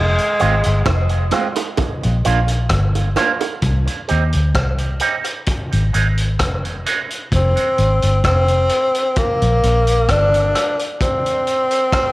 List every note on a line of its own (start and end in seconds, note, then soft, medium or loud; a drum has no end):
0.00 0.17 F1 loud
0.00 0.83 G#3 medium
0.18 closed hi-hat medium
0.39 0.64 G#1 medium
0.39 0.54 G#3 medium
0.39 0.54 C4 medium
0.39 0.54 F4 medium
0.39 closed hi-hat soft
0.64 0.86 G1 medium
0.64 closed hi-hat medium
0.86 1.31 F1 medium
0.86 kick loud
0.86 cross-stick loud
0.86 closed hi-hat medium
0.86 high bongo medium
1.09 closed hi-hat soft
1.31 1.46 G#3 medium
1.31 1.47 C4 medium
1.31 1.47 F4 loud
1.31 cross-stick medium
1.31 closed hi-hat medium
1.31 low bongo medium
1.56 closed hi-hat medium
1.56 high bongo medium
1.77 kick loud
1.77 closed hi-hat medium
1.77 high bongo medium
2.03 2.25 A#1 medium
2.03 closed hi-hat soft
2.25 2.70 A#1 medium
2.25 2.39 A#3 medium
2.25 2.39 D4 medium
2.25 2.39 F4 loud
2.25 closed hi-hat medium
2.48 closed hi-hat medium
2.69 3.15 G1 medium
2.69 kick loud
2.69 cross-stick loud
2.69 closed hi-hat medium
2.95 closed hi-hat soft
2.95 high bongo soft
3.16 3.30 A#3 medium
3.16 3.31 D4 medium
3.16 3.31 F4 medium
3.16 cross-stick medium
3.16 closed hi-hat medium
3.16 low bongo medium
3.40 closed hi-hat soft
3.40 high bongo medium
3.62 3.86 C2 loud
3.62 kick loud
3.62 closed hi-hat medium
3.87 closed hi-hat medium
4.08 4.33 D#2 medium
4.08 4.22 G3 medium
4.08 4.23 C4 medium
4.08 4.23 D#4 medium
4.08 closed hi-hat soft
4.33 4.55 D2 medium
4.33 closed hi-hat soft
4.55 4.99 C2 medium
4.55 kick loud
4.55 cross-stick loud
4.55 closed hi-hat medium
4.78 closed hi-hat soft
5.00 5.15 G3 medium
5.00 5.15 C4 medium
5.00 5.15 D#4 loud
5.00 closed hi-hat medium
5.24 closed hi-hat medium
5.46 kick loud
5.46 closed hi-hat medium
5.72 5.93 G#1 medium
5.72 closed hi-hat medium
5.92 6.40 G#1 medium
5.92 6.07 G#3 medium
5.92 6.07 C4 medium
5.92 6.08 D#4 loud
5.92 closed hi-hat medium
6.17 closed hi-hat medium
6.39 6.84 F1 loud
6.39 kick loud
6.39 cross-stick loud
6.39 closed hi-hat loud
6.65 closed hi-hat soft
6.85 6.99 G#3 medium
6.85 7.00 C4 medium
6.85 7.00 D#4 medium
6.85 closed hi-hat medium
7.11 closed hi-hat soft
7.32 7.56 F1 medium
7.32 8.22 C4 medium
7.32 kick loud
7.32 closed hi-hat medium
7.57 closed hi-hat medium
7.78 8.02 G#1 medium
7.78 closed hi-hat medium
8.02 8.24 G1 medium
8.02 closed hi-hat soft
8.24 8.69 F1 loud
8.24 9.14 C4 medium
8.24 kick loud
8.24 cross-stick loud
8.24 closed hi-hat medium
8.48 closed hi-hat soft
8.69 closed hi-hat medium
8.95 closed hi-hat medium
9.16 10.12 A#3 medium
9.16 kick loud
9.16 closed hi-hat medium
9.42 9.62 A#1 medium
9.42 closed hi-hat medium
9.63 10.07 A#1 medium
9.63 closed hi-hat medium
9.87 closed hi-hat medium
10.09 10.53 G1 medium
10.09 10.80 D4 loud
10.09 kick loud
10.09 cross-stick loud
10.09 closed hi-hat loud
10.34 closed hi-hat soft
10.55 cross-stick medium
10.55 closed hi-hat medium
10.79 closed hi-hat medium
11.01 12.12 C4 loud
11.01 kick loud
11.01 closed hi-hat medium
11.26 closed hi-hat medium
11.47 closed hi-hat soft
11.71 closed hi-hat soft
11.93 kick loud
11.93 cross-stick loud
11.93 closed hi-hat medium